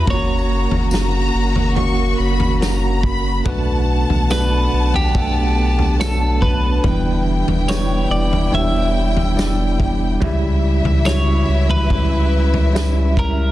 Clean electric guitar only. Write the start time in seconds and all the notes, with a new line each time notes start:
0.10 C#5
4.32 B4
4.96 G4
6.01 A4
6.42 B4
7.70 C#5
8.11 D5
8.55 E5
11.06 C#5
11.70 B4
13.19 A#4